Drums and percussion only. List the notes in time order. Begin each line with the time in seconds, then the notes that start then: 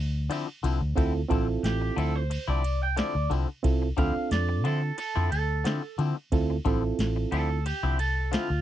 0.31 ride
0.64 ride
0.97 kick, ride
1.31 kick, ride
1.64 snare, ride
1.98 ride
2.31 ride
2.64 ride
2.97 snare, ride
3.31 ride
3.64 kick, ride
3.98 kick, ride
4.31 snare, ride
4.65 ride
4.98 ride
5.32 ride
5.65 snare, ride
5.99 ride
6.32 kick, ride
6.66 kick, ride
6.99 snare, ride
7.32 ride
7.66 ride
7.99 ride
8.33 snare, ride